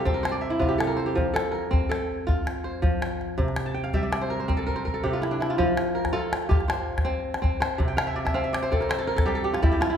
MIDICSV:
0, 0, Header, 1, 3, 480
1, 0, Start_track
1, 0, Key_signature, -1, "major"
1, 0, Tempo, 368098
1, 1524, Time_signature, 12, 3, 24, 8
1, 13002, End_track
2, 0, Start_track
2, 0, Title_t, "Kora"
2, 0, Program_c, 0, 46
2, 0, Note_on_c, 0, 48, 69
2, 0, Note_on_c, 0, 55, 74
2, 0, Note_on_c, 0, 65, 65
2, 0, Note_on_c, 0, 67, 54
2, 0, Note_on_c, 0, 70, 64
2, 0, Note_on_c, 0, 72, 65
2, 0, Note_on_c, 0, 74, 59
2, 0, Note_on_c, 0, 77, 63
2, 69, Note_on_c, 0, 60, 73
2, 72, Note_on_c, 0, 69, 65
2, 150, Note_off_c, 0, 70, 0
2, 184, Note_on_c, 0, 70, 63
2, 293, Note_off_c, 0, 77, 0
2, 295, Note_off_c, 0, 72, 0
2, 300, Note_on_c, 0, 72, 71
2, 408, Note_off_c, 0, 74, 0
2, 413, Note_on_c, 0, 74, 65
2, 538, Note_on_c, 0, 76, 59
2, 616, Note_off_c, 0, 65, 0
2, 655, Note_on_c, 0, 64, 68
2, 760, Note_off_c, 0, 48, 0
2, 775, Note_on_c, 0, 48, 70
2, 778, Note_on_c, 0, 65, 59
2, 856, Note_off_c, 0, 76, 0
2, 888, Note_off_c, 0, 67, 0
2, 893, Note_on_c, 0, 67, 62
2, 1015, Note_off_c, 0, 69, 0
2, 1020, Note_on_c, 0, 69, 66
2, 1098, Note_off_c, 0, 70, 0
2, 1134, Note_on_c, 0, 70, 65
2, 1255, Note_off_c, 0, 72, 0
2, 1260, Note_on_c, 0, 72, 64
2, 1377, Note_off_c, 0, 67, 0
2, 1382, Note_on_c, 0, 67, 62
2, 1504, Note_on_c, 0, 53, 71
2, 1583, Note_off_c, 0, 64, 0
2, 1589, Note_off_c, 0, 48, 0
2, 1589, Note_off_c, 0, 55, 0
2, 1736, Note_off_c, 0, 69, 0
2, 1741, Note_on_c, 0, 69, 64
2, 1820, Note_off_c, 0, 70, 0
2, 1858, Note_off_c, 0, 74, 0
2, 1976, Note_on_c, 0, 70, 57
2, 2221, Note_off_c, 0, 60, 0
2, 2226, Note_on_c, 0, 60, 78
2, 2464, Note_off_c, 0, 69, 0
2, 2469, Note_on_c, 0, 69, 64
2, 2752, Note_off_c, 0, 65, 0
2, 2809, Note_off_c, 0, 72, 0
2, 2957, Note_on_c, 0, 65, 74
2, 3223, Note_off_c, 0, 67, 0
2, 3445, Note_on_c, 0, 72, 55
2, 3636, Note_off_c, 0, 70, 0
2, 3664, Note_off_c, 0, 53, 0
2, 3680, Note_on_c, 0, 53, 73
2, 4187, Note_off_c, 0, 69, 0
2, 4403, Note_on_c, 0, 48, 75
2, 4474, Note_off_c, 0, 53, 0
2, 4573, Note_off_c, 0, 60, 0
2, 4771, Note_on_c, 0, 81, 56
2, 4882, Note_on_c, 0, 79, 58
2, 4931, Note_off_c, 0, 65, 0
2, 4993, Note_off_c, 0, 72, 0
2, 5002, Note_on_c, 0, 77, 56
2, 5135, Note_on_c, 0, 55, 70
2, 5136, Note_on_c, 0, 76, 62
2, 5251, Note_on_c, 0, 74, 54
2, 5367, Note_off_c, 0, 74, 0
2, 5372, Note_on_c, 0, 74, 67
2, 5494, Note_on_c, 0, 72, 64
2, 5608, Note_on_c, 0, 70, 59
2, 5686, Note_off_c, 0, 81, 0
2, 5730, Note_off_c, 0, 72, 0
2, 5735, Note_on_c, 0, 72, 52
2, 5843, Note_on_c, 0, 60, 73
2, 5844, Note_off_c, 0, 70, 0
2, 5849, Note_on_c, 0, 70, 58
2, 5958, Note_on_c, 0, 69, 66
2, 6078, Note_off_c, 0, 70, 0
2, 6083, Note_on_c, 0, 70, 62
2, 6097, Note_off_c, 0, 79, 0
2, 6199, Note_off_c, 0, 72, 0
2, 6204, Note_on_c, 0, 72, 61
2, 6304, Note_off_c, 0, 77, 0
2, 6319, Note_off_c, 0, 70, 0
2, 6324, Note_on_c, 0, 70, 58
2, 6402, Note_off_c, 0, 69, 0
2, 6440, Note_on_c, 0, 69, 57
2, 6484, Note_off_c, 0, 76, 0
2, 6551, Note_off_c, 0, 48, 0
2, 6566, Note_on_c, 0, 48, 70
2, 6569, Note_on_c, 0, 67, 65
2, 6691, Note_on_c, 0, 65, 58
2, 6803, Note_on_c, 0, 64, 60
2, 6817, Note_off_c, 0, 74, 0
2, 6926, Note_on_c, 0, 62, 62
2, 7041, Note_off_c, 0, 64, 0
2, 7046, Note_on_c, 0, 64, 61
2, 7124, Note_off_c, 0, 65, 0
2, 7171, Note_on_c, 0, 65, 65
2, 7276, Note_off_c, 0, 65, 0
2, 7278, Note_on_c, 0, 53, 86
2, 7281, Note_on_c, 0, 65, 73
2, 7355, Note_off_c, 0, 48, 0
2, 7355, Note_off_c, 0, 55, 0
2, 7356, Note_off_c, 0, 64, 0
2, 7751, Note_off_c, 0, 70, 0
2, 7753, Note_off_c, 0, 72, 0
2, 7756, Note_on_c, 0, 70, 61
2, 7834, Note_off_c, 0, 69, 0
2, 7984, Note_off_c, 0, 65, 0
2, 7989, Note_on_c, 0, 65, 85
2, 7991, Note_on_c, 0, 69, 72
2, 8191, Note_off_c, 0, 60, 0
2, 8410, Note_off_c, 0, 67, 0
2, 8458, Note_off_c, 0, 65, 0
2, 8463, Note_on_c, 0, 65, 75
2, 8463, Note_on_c, 0, 67, 61
2, 8711, Note_on_c, 0, 72, 64
2, 9116, Note_off_c, 0, 62, 0
2, 9188, Note_on_c, 0, 60, 74
2, 9416, Note_off_c, 0, 70, 0
2, 9668, Note_off_c, 0, 60, 0
2, 9674, Note_on_c, 0, 60, 74
2, 9710, Note_off_c, 0, 69, 0
2, 9909, Note_off_c, 0, 72, 0
2, 9914, Note_on_c, 0, 72, 65
2, 10149, Note_on_c, 0, 48, 73
2, 10230, Note_off_c, 0, 53, 0
2, 10273, Note_on_c, 0, 79, 71
2, 10305, Note_off_c, 0, 67, 0
2, 10391, Note_on_c, 0, 77, 68
2, 10437, Note_off_c, 0, 65, 0
2, 10521, Note_on_c, 0, 76, 61
2, 10638, Note_on_c, 0, 74, 72
2, 10753, Note_off_c, 0, 76, 0
2, 10758, Note_on_c, 0, 76, 66
2, 10837, Note_off_c, 0, 77, 0
2, 10872, Note_off_c, 0, 60, 0
2, 10877, Note_on_c, 0, 60, 81
2, 10883, Note_on_c, 0, 77, 65
2, 10996, Note_off_c, 0, 76, 0
2, 11001, Note_on_c, 0, 76, 63
2, 11117, Note_off_c, 0, 74, 0
2, 11122, Note_on_c, 0, 74, 65
2, 11242, Note_off_c, 0, 72, 0
2, 11247, Note_on_c, 0, 72, 78
2, 11360, Note_off_c, 0, 60, 0
2, 11366, Note_on_c, 0, 60, 70
2, 11369, Note_on_c, 0, 69, 66
2, 11483, Note_on_c, 0, 70, 53
2, 11488, Note_off_c, 0, 79, 0
2, 11589, Note_off_c, 0, 72, 0
2, 11594, Note_on_c, 0, 72, 61
2, 11711, Note_off_c, 0, 69, 0
2, 11716, Note_on_c, 0, 69, 66
2, 11794, Note_off_c, 0, 70, 0
2, 11831, Note_on_c, 0, 70, 71
2, 11945, Note_off_c, 0, 69, 0
2, 11950, Note_on_c, 0, 69, 71
2, 12070, Note_on_c, 0, 55, 73
2, 12075, Note_on_c, 0, 67, 68
2, 12185, Note_off_c, 0, 77, 0
2, 12188, Note_off_c, 0, 69, 0
2, 12193, Note_on_c, 0, 69, 71
2, 12272, Note_off_c, 0, 70, 0
2, 12306, Note_off_c, 0, 67, 0
2, 12311, Note_on_c, 0, 67, 66
2, 12350, Note_off_c, 0, 76, 0
2, 12432, Note_on_c, 0, 65, 67
2, 12535, Note_off_c, 0, 55, 0
2, 12550, Note_on_c, 0, 55, 80
2, 12554, Note_on_c, 0, 64, 77
2, 12567, Note_off_c, 0, 74, 0
2, 12665, Note_off_c, 0, 67, 0
2, 12670, Note_on_c, 0, 67, 63
2, 12784, Note_off_c, 0, 65, 0
2, 12789, Note_on_c, 0, 65, 78
2, 12867, Note_off_c, 0, 64, 0
2, 12908, Note_on_c, 0, 64, 77
2, 13002, Note_off_c, 0, 48, 0
2, 13002, Note_off_c, 0, 55, 0
2, 13002, Note_off_c, 0, 60, 0
2, 13002, Note_off_c, 0, 64, 0
2, 13002, Note_off_c, 0, 65, 0
2, 13002, Note_off_c, 0, 67, 0
2, 13002, Note_off_c, 0, 69, 0
2, 13002, Note_off_c, 0, 72, 0
2, 13002, End_track
3, 0, Start_track
3, 0, Title_t, "Calabash"
3, 86, Note_on_c, 9, 36, 65
3, 216, Note_off_c, 9, 36, 0
3, 330, Note_on_c, 9, 38, 57
3, 460, Note_off_c, 9, 38, 0
3, 808, Note_on_c, 9, 36, 61
3, 939, Note_off_c, 9, 36, 0
3, 1050, Note_on_c, 9, 38, 58
3, 1180, Note_off_c, 9, 38, 0
3, 1301, Note_on_c, 9, 38, 18
3, 1432, Note_off_c, 9, 38, 0
3, 1532, Note_on_c, 9, 36, 61
3, 1662, Note_off_c, 9, 36, 0
3, 1777, Note_on_c, 9, 38, 68
3, 1900, Note_off_c, 9, 38, 0
3, 1900, Note_on_c, 9, 38, 18
3, 2022, Note_off_c, 9, 38, 0
3, 2022, Note_on_c, 9, 38, 18
3, 2153, Note_off_c, 9, 38, 0
3, 2259, Note_on_c, 9, 36, 62
3, 2389, Note_off_c, 9, 36, 0
3, 2498, Note_on_c, 9, 38, 58
3, 2629, Note_off_c, 9, 38, 0
3, 2982, Note_on_c, 9, 36, 66
3, 3112, Note_off_c, 9, 36, 0
3, 3221, Note_on_c, 9, 38, 54
3, 3352, Note_off_c, 9, 38, 0
3, 3698, Note_on_c, 9, 36, 60
3, 3828, Note_off_c, 9, 36, 0
3, 3941, Note_on_c, 9, 38, 61
3, 4072, Note_off_c, 9, 38, 0
3, 4187, Note_on_c, 9, 38, 20
3, 4318, Note_off_c, 9, 38, 0
3, 4418, Note_on_c, 9, 36, 66
3, 4543, Note_on_c, 9, 38, 19
3, 4548, Note_off_c, 9, 36, 0
3, 4648, Note_off_c, 9, 38, 0
3, 4648, Note_on_c, 9, 38, 60
3, 4778, Note_off_c, 9, 38, 0
3, 5014, Note_on_c, 9, 38, 19
3, 5130, Note_on_c, 9, 36, 58
3, 5144, Note_off_c, 9, 38, 0
3, 5261, Note_off_c, 9, 36, 0
3, 5380, Note_on_c, 9, 38, 63
3, 5499, Note_off_c, 9, 38, 0
3, 5499, Note_on_c, 9, 38, 17
3, 5630, Note_off_c, 9, 38, 0
3, 5861, Note_on_c, 9, 36, 61
3, 5986, Note_on_c, 9, 38, 18
3, 5991, Note_off_c, 9, 36, 0
3, 6108, Note_on_c, 9, 36, 35
3, 6116, Note_off_c, 9, 38, 0
3, 6239, Note_off_c, 9, 36, 0
3, 6351, Note_on_c, 9, 36, 37
3, 6482, Note_off_c, 9, 36, 0
3, 6595, Note_on_c, 9, 36, 41
3, 6725, Note_off_c, 9, 36, 0
3, 6825, Note_on_c, 9, 38, 42
3, 6956, Note_off_c, 9, 38, 0
3, 7071, Note_on_c, 9, 38, 52
3, 7201, Note_off_c, 9, 38, 0
3, 7294, Note_on_c, 9, 36, 59
3, 7425, Note_off_c, 9, 36, 0
3, 7530, Note_on_c, 9, 38, 64
3, 7660, Note_off_c, 9, 38, 0
3, 7888, Note_on_c, 9, 36, 49
3, 7888, Note_on_c, 9, 38, 52
3, 8018, Note_off_c, 9, 36, 0
3, 8018, Note_off_c, 9, 38, 0
3, 8251, Note_on_c, 9, 38, 64
3, 8377, Note_off_c, 9, 38, 0
3, 8377, Note_on_c, 9, 38, 19
3, 8492, Note_off_c, 9, 38, 0
3, 8492, Note_on_c, 9, 36, 68
3, 8492, Note_on_c, 9, 38, 21
3, 8613, Note_off_c, 9, 38, 0
3, 8613, Note_on_c, 9, 38, 20
3, 8622, Note_off_c, 9, 36, 0
3, 8734, Note_off_c, 9, 38, 0
3, 8734, Note_on_c, 9, 38, 69
3, 8864, Note_off_c, 9, 38, 0
3, 9099, Note_on_c, 9, 36, 58
3, 9099, Note_on_c, 9, 38, 60
3, 9206, Note_off_c, 9, 38, 0
3, 9206, Note_on_c, 9, 38, 23
3, 9229, Note_off_c, 9, 36, 0
3, 9336, Note_off_c, 9, 38, 0
3, 9576, Note_on_c, 9, 38, 55
3, 9700, Note_on_c, 9, 36, 60
3, 9706, Note_off_c, 9, 38, 0
3, 9830, Note_off_c, 9, 36, 0
3, 9936, Note_on_c, 9, 38, 77
3, 10067, Note_off_c, 9, 38, 0
3, 10171, Note_on_c, 9, 36, 76
3, 10301, Note_off_c, 9, 36, 0
3, 10410, Note_on_c, 9, 38, 81
3, 10540, Note_off_c, 9, 38, 0
3, 10779, Note_on_c, 9, 36, 64
3, 10779, Note_on_c, 9, 38, 63
3, 10909, Note_off_c, 9, 36, 0
3, 10909, Note_off_c, 9, 38, 0
3, 11142, Note_on_c, 9, 38, 65
3, 11265, Note_off_c, 9, 38, 0
3, 11265, Note_on_c, 9, 38, 23
3, 11379, Note_off_c, 9, 38, 0
3, 11379, Note_on_c, 9, 36, 67
3, 11379, Note_on_c, 9, 38, 22
3, 11505, Note_off_c, 9, 38, 0
3, 11505, Note_on_c, 9, 38, 25
3, 11509, Note_off_c, 9, 36, 0
3, 11616, Note_off_c, 9, 38, 0
3, 11616, Note_on_c, 9, 38, 77
3, 11746, Note_off_c, 9, 38, 0
3, 11974, Note_on_c, 9, 36, 64
3, 11974, Note_on_c, 9, 38, 65
3, 12100, Note_off_c, 9, 38, 0
3, 12100, Note_on_c, 9, 38, 21
3, 12104, Note_off_c, 9, 36, 0
3, 12231, Note_off_c, 9, 38, 0
3, 12446, Note_on_c, 9, 38, 55
3, 12564, Note_on_c, 9, 36, 75
3, 12576, Note_off_c, 9, 38, 0
3, 12686, Note_on_c, 9, 38, 22
3, 12694, Note_off_c, 9, 36, 0
3, 12805, Note_off_c, 9, 38, 0
3, 12805, Note_on_c, 9, 38, 61
3, 12935, Note_off_c, 9, 38, 0
3, 13002, End_track
0, 0, End_of_file